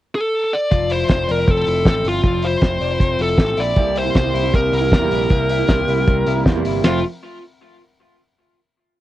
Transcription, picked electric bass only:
0, 0, Header, 1, 2, 480
1, 0, Start_track
1, 0, Key_signature, -1, "major"
1, 0, Tempo, 383632
1, 896, Time_signature, 4, 2, 24, 8
1, 11265, End_track
2, 0, Start_track
2, 0, Title_t, "Picked electric bass"
2, 0, Program_c, 0, 34
2, 900, Note_on_c, 0, 29, 88
2, 1290, Note_off_c, 0, 29, 0
2, 1372, Note_on_c, 0, 29, 84
2, 1569, Note_off_c, 0, 29, 0
2, 1617, Note_on_c, 0, 29, 81
2, 1811, Note_off_c, 0, 29, 0
2, 1854, Note_on_c, 0, 29, 83
2, 2049, Note_off_c, 0, 29, 0
2, 2089, Note_on_c, 0, 29, 87
2, 2286, Note_off_c, 0, 29, 0
2, 2324, Note_on_c, 0, 33, 78
2, 2522, Note_off_c, 0, 33, 0
2, 2558, Note_on_c, 0, 31, 71
2, 2758, Note_off_c, 0, 31, 0
2, 2801, Note_on_c, 0, 29, 84
2, 3196, Note_off_c, 0, 29, 0
2, 3278, Note_on_c, 0, 29, 94
2, 3477, Note_off_c, 0, 29, 0
2, 3511, Note_on_c, 0, 29, 94
2, 3713, Note_off_c, 0, 29, 0
2, 3760, Note_on_c, 0, 29, 88
2, 3958, Note_off_c, 0, 29, 0
2, 3992, Note_on_c, 0, 29, 86
2, 4193, Note_off_c, 0, 29, 0
2, 4228, Note_on_c, 0, 33, 81
2, 4430, Note_off_c, 0, 33, 0
2, 4469, Note_on_c, 0, 34, 78
2, 4670, Note_off_c, 0, 34, 0
2, 4714, Note_on_c, 0, 36, 94
2, 5110, Note_off_c, 0, 36, 0
2, 5197, Note_on_c, 0, 36, 95
2, 5395, Note_off_c, 0, 36, 0
2, 5425, Note_on_c, 0, 36, 78
2, 5628, Note_off_c, 0, 36, 0
2, 5678, Note_on_c, 0, 36, 97
2, 5876, Note_off_c, 0, 36, 0
2, 5910, Note_on_c, 0, 36, 97
2, 6155, Note_on_c, 0, 40, 76
2, 6173, Note_off_c, 0, 36, 0
2, 6354, Note_off_c, 0, 40, 0
2, 6398, Note_on_c, 0, 34, 72
2, 6596, Note_off_c, 0, 34, 0
2, 6639, Note_on_c, 0, 36, 83
2, 7034, Note_off_c, 0, 36, 0
2, 7120, Note_on_c, 0, 36, 94
2, 7318, Note_off_c, 0, 36, 0
2, 7353, Note_on_c, 0, 36, 79
2, 7555, Note_off_c, 0, 36, 0
2, 7603, Note_on_c, 0, 36, 90
2, 7801, Note_off_c, 0, 36, 0
2, 7840, Note_on_c, 0, 36, 87
2, 8039, Note_off_c, 0, 36, 0
2, 8081, Note_on_c, 0, 40, 80
2, 8280, Note_off_c, 0, 40, 0
2, 8321, Note_on_c, 0, 31, 70
2, 8521, Note_off_c, 0, 31, 0
2, 8567, Note_on_c, 0, 29, 77
2, 8791, Note_off_c, 0, 29, 0
2, 11265, End_track
0, 0, End_of_file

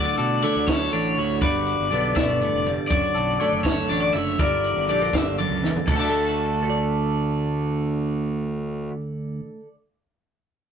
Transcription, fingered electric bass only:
0, 0, Header, 1, 2, 480
1, 0, Start_track
1, 0, Key_signature, 2, "major"
1, 0, Tempo, 495868
1, 1373, Time_signature, 6, 3, 24, 8
1, 10370, End_track
2, 0, Start_track
2, 0, Title_t, "Fingered electric bass"
2, 0, Program_c, 0, 33
2, 171, Note_on_c, 0, 47, 77
2, 376, Note_off_c, 0, 47, 0
2, 538, Note_on_c, 0, 38, 81
2, 841, Note_off_c, 0, 38, 0
2, 899, Note_on_c, 0, 33, 78
2, 1099, Note_off_c, 0, 33, 0
2, 1140, Note_on_c, 0, 38, 76
2, 1340, Note_off_c, 0, 38, 0
2, 1367, Note_on_c, 0, 31, 86
2, 1674, Note_off_c, 0, 31, 0
2, 1734, Note_on_c, 0, 31, 80
2, 1834, Note_off_c, 0, 31, 0
2, 1846, Note_on_c, 0, 35, 84
2, 2051, Note_off_c, 0, 35, 0
2, 2093, Note_on_c, 0, 31, 84
2, 2397, Note_off_c, 0, 31, 0
2, 2451, Note_on_c, 0, 29, 87
2, 2654, Note_off_c, 0, 29, 0
2, 2815, Note_on_c, 0, 30, 87
2, 2915, Note_off_c, 0, 30, 0
2, 3044, Note_on_c, 0, 35, 74
2, 3250, Note_off_c, 0, 35, 0
2, 3413, Note_on_c, 0, 30, 69
2, 3717, Note_off_c, 0, 30, 0
2, 3766, Note_on_c, 0, 33, 82
2, 3971, Note_off_c, 0, 33, 0
2, 4005, Note_on_c, 0, 30, 73
2, 4211, Note_off_c, 0, 30, 0
2, 4250, Note_on_c, 0, 31, 93
2, 4555, Note_off_c, 0, 31, 0
2, 4603, Note_on_c, 0, 31, 91
2, 4708, Note_off_c, 0, 31, 0
2, 4725, Note_on_c, 0, 34, 86
2, 4931, Note_off_c, 0, 34, 0
2, 4966, Note_on_c, 0, 31, 74
2, 5273, Note_off_c, 0, 31, 0
2, 5319, Note_on_c, 0, 37, 75
2, 5527, Note_off_c, 0, 37, 0
2, 5690, Note_on_c, 0, 38, 82
2, 8603, Note_off_c, 0, 38, 0
2, 10370, End_track
0, 0, End_of_file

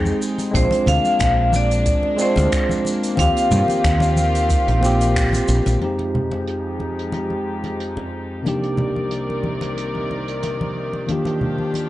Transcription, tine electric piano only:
0, 0, Header, 1, 2, 480
1, 0, Start_track
1, 0, Tempo, 659341
1, 396, Time_signature, 4, 2, 24, 8
1, 8657, End_track
2, 0, Start_track
2, 0, Title_t, "Tine electric piano"
2, 0, Program_c, 0, 4
2, 0, Control_c, 0, 64, 127
2, 0, Note_on_c, 0, 56, 91
2, 0, Note_on_c, 0, 60, 86
2, 0, Note_on_c, 0, 63, 82
2, 0, Note_on_c, 0, 79, 97
2, 358, Note_off_c, 0, 56, 0
2, 365, Note_off_c, 0, 60, 0
2, 372, Note_off_c, 0, 63, 0
2, 372, Note_on_c, 0, 56, 90
2, 379, Note_off_c, 0, 79, 0
2, 388, Note_on_c, 0, 60, 82
2, 400, Note_on_c, 0, 62, 86
2, 404, Control_c, 0, 64, 0
2, 415, Note_on_c, 0, 65, 99
2, 534, Control_c, 0, 64, 127
2, 1557, Note_off_c, 0, 56, 0
2, 1565, Note_off_c, 0, 60, 0
2, 1572, Note_off_c, 0, 62, 0
2, 1575, Note_on_c, 0, 56, 89
2, 1579, Note_off_c, 0, 65, 0
2, 1588, Note_on_c, 0, 60, 84
2, 1601, Note_on_c, 0, 62, 86
2, 1616, Note_on_c, 0, 65, 97
2, 2279, Note_off_c, 0, 56, 0
2, 2285, Note_off_c, 0, 60, 0
2, 2292, Note_off_c, 0, 62, 0
2, 2297, Note_on_c, 0, 58, 94
2, 2299, Note_off_c, 0, 65, 0
2, 2311, Note_on_c, 0, 60, 88
2, 2324, Note_on_c, 0, 65, 84
2, 2325, Control_c, 0, 64, 0
2, 2339, Note_on_c, 0, 67, 102
2, 2465, Control_c, 0, 64, 127
2, 3480, Note_off_c, 0, 58, 0
2, 3487, Note_off_c, 0, 60, 0
2, 3494, Note_off_c, 0, 65, 0
2, 3496, Note_on_c, 0, 58, 90
2, 3501, Note_off_c, 0, 67, 0
2, 3511, Note_on_c, 0, 60, 82
2, 3523, Note_on_c, 0, 65, 81
2, 3537, Note_on_c, 0, 67, 101
2, 4199, Note_off_c, 0, 58, 0
2, 4207, Note_off_c, 0, 60, 0
2, 4213, Note_off_c, 0, 65, 0
2, 4213, Note_on_c, 0, 41, 64
2, 4220, Note_off_c, 0, 67, 0
2, 4225, Note_on_c, 0, 56, 59
2, 4234, Note_on_c, 0, 60, 61
2, 4243, Note_on_c, 0, 63, 59
2, 4246, Control_c, 0, 64, 0
2, 4254, Note_on_c, 0, 67, 71
2, 4362, Control_c, 0, 64, 127
2, 6118, Note_off_c, 0, 41, 0
2, 6124, Note_off_c, 0, 56, 0
2, 6128, Note_off_c, 0, 60, 0
2, 6133, Note_off_c, 0, 63, 0
2, 6133, Note_on_c, 0, 48, 66
2, 6138, Note_off_c, 0, 67, 0
2, 6145, Note_on_c, 0, 58, 63
2, 6156, Note_on_c, 0, 62, 61
2, 6164, Note_on_c, 0, 63, 60
2, 6166, Control_c, 0, 64, 0
2, 6176, Note_on_c, 0, 67, 78
2, 6286, Control_c, 0, 64, 127
2, 8038, Note_off_c, 0, 48, 0
2, 8044, Note_off_c, 0, 58, 0
2, 8049, Note_off_c, 0, 62, 0
2, 8053, Note_off_c, 0, 63, 0
2, 8055, Note_on_c, 0, 51, 68
2, 8059, Note_off_c, 0, 67, 0
2, 8066, Note_on_c, 0, 58, 64
2, 8074, Note_on_c, 0, 62, 61
2, 8084, Note_on_c, 0, 65, 63
2, 8085, Control_c, 0, 64, 0
2, 8093, Note_on_c, 0, 67, 76
2, 8197, Control_c, 0, 64, 127
2, 8657, Note_off_c, 0, 51, 0
2, 8657, Note_off_c, 0, 58, 0
2, 8657, Note_off_c, 0, 62, 0
2, 8657, Note_off_c, 0, 65, 0
2, 8657, Note_off_c, 0, 67, 0
2, 8657, End_track
0, 0, End_of_file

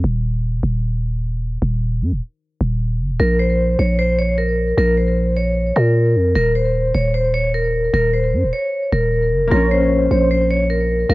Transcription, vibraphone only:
0, 0, Header, 1, 2, 480
1, 0, Start_track
1, 0, Key_signature, -5, "minor"
1, 0, Tempo, 394737
1, 49, Time_signature, 4, 2, 24, 8
1, 13549, End_track
2, 0, Start_track
2, 0, Title_t, "Vibraphone"
2, 0, Program_c, 0, 11
2, 3888, Note_on_c, 0, 70, 97
2, 4077, Note_off_c, 0, 70, 0
2, 4127, Note_on_c, 0, 72, 81
2, 4579, Note_off_c, 0, 72, 0
2, 4611, Note_on_c, 0, 73, 76
2, 4799, Note_off_c, 0, 73, 0
2, 4852, Note_on_c, 0, 72, 88
2, 5039, Note_off_c, 0, 72, 0
2, 5092, Note_on_c, 0, 73, 85
2, 5280, Note_off_c, 0, 73, 0
2, 5328, Note_on_c, 0, 70, 73
2, 5780, Note_off_c, 0, 70, 0
2, 5813, Note_on_c, 0, 70, 109
2, 6000, Note_off_c, 0, 70, 0
2, 6049, Note_on_c, 0, 72, 71
2, 6500, Note_off_c, 0, 72, 0
2, 6527, Note_on_c, 0, 73, 74
2, 6979, Note_off_c, 0, 73, 0
2, 7005, Note_on_c, 0, 70, 87
2, 7684, Note_off_c, 0, 70, 0
2, 7727, Note_on_c, 0, 70, 107
2, 7916, Note_off_c, 0, 70, 0
2, 7969, Note_on_c, 0, 72, 83
2, 8420, Note_off_c, 0, 72, 0
2, 8447, Note_on_c, 0, 73, 84
2, 8637, Note_off_c, 0, 73, 0
2, 8687, Note_on_c, 0, 72, 95
2, 8877, Note_off_c, 0, 72, 0
2, 8926, Note_on_c, 0, 73, 83
2, 9116, Note_off_c, 0, 73, 0
2, 9173, Note_on_c, 0, 70, 80
2, 9623, Note_off_c, 0, 70, 0
2, 9653, Note_on_c, 0, 70, 104
2, 9840, Note_off_c, 0, 70, 0
2, 9891, Note_on_c, 0, 72, 76
2, 10341, Note_off_c, 0, 72, 0
2, 10369, Note_on_c, 0, 73, 80
2, 10820, Note_off_c, 0, 73, 0
2, 10850, Note_on_c, 0, 70, 86
2, 11526, Note_off_c, 0, 70, 0
2, 11567, Note_on_c, 0, 70, 100
2, 11757, Note_off_c, 0, 70, 0
2, 11808, Note_on_c, 0, 72, 84
2, 12260, Note_off_c, 0, 72, 0
2, 12292, Note_on_c, 0, 73, 80
2, 12480, Note_off_c, 0, 73, 0
2, 12532, Note_on_c, 0, 72, 89
2, 12720, Note_off_c, 0, 72, 0
2, 12772, Note_on_c, 0, 73, 87
2, 12960, Note_off_c, 0, 73, 0
2, 13008, Note_on_c, 0, 70, 77
2, 13460, Note_off_c, 0, 70, 0
2, 13493, Note_on_c, 0, 70, 111
2, 13549, Note_off_c, 0, 70, 0
2, 13549, End_track
0, 0, End_of_file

